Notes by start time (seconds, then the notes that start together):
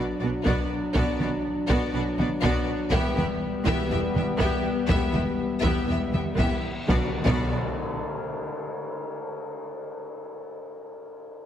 Already playing: F#3 D4
0.20 B1 B2 B3 F#4 D5
0.44 B1 B2 B3 F#4 D5, taiko
0.94 B1 B2 B3 F#4 D5, taiko
1.20 B1 B2 B3 F#4 D5, taiko mid
1.69 B1 B2 B3 F#4 D5, taiko
1.93 B1 B2 B3 F#4 D5
2.18 B1 B2 B3 F#4 D5, taiko mid
2.42 B1 B2 B3 F#4 D5, taiko
2.91 E1 E2 G3 B3 G4 E5, taiko
3.16 E1 E2 B3 G4 E5, taiko mid
3.65 E1 E2 B3 G4 E5, taiko
3.91 E1 E2 B3 G4 E5
4.15 E1 E2 B3 G4 E5, taiko mid
4.38 E1 E2 B3 G4 E5, taiko
4.88 E1 E2 B3 G4 E5, taiko
5.12 E1 E2 B3 G4 E5, taiko mid
5.61 E1 E2 B3 G4 E5, taiko
5.87 E1 E2 B3 G4 E5
6.13 E1 E2 B3 G4 E5, taiko mid
6.37 E1 E2 B3 G4 E5, taiko
6.87 B1 B2 F#3 B3 D4 F#4 D5, taiko, tam-tam
7.25 B1 B2 B3 F#4 D5, taiko, tam-tam